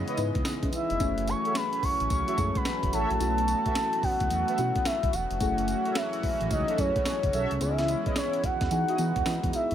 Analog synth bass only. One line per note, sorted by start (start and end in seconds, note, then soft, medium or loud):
0.18 0.31 G#2 medium
0.35 0.43 C#2 medium
0.63 0.70 C#3 loud
0.91 0.98 F1 loud
1.00 1.34 F#1 loud
1.83 1.90 A1 soft
2.01 2.08 A1 medium
2.11 2.24 C#2 medium
2.38 2.51 F#2 loud
2.83 2.91 F#1 loud
2.93 3.06 A1 medium
3.11 3.18 A#1 medium
3.21 3.55 B1 loud
4.03 4.10 C#2 soft
4.21 4.28 C#2 medium
4.31 4.44 E2 medium
4.58 4.72 B2 loud
5.03 5.11 B1 medium
5.13 5.27 E1 loud
5.31 5.38 F1 loud
5.41 5.75 F#1 loud
6.24 6.30 A1 soft
6.41 6.49 A1 loud
6.51 6.64 C#2 medium
6.78 6.92 F#2 loud
7.24 7.31 F#1 loud
7.34 7.47 B1 loud
7.52 7.59 C2 medium
7.61 7.95 C#2 loud
8.44 8.51 E2 soft
8.61 8.69 E2 medium
8.71 8.84 E3 loud
8.99 9.12 E3 loud
9.16 9.24 E2 medium
9.26 9.39 E3 loud
9.44 9.51 E2 loud
9.72 9.75 F2 loud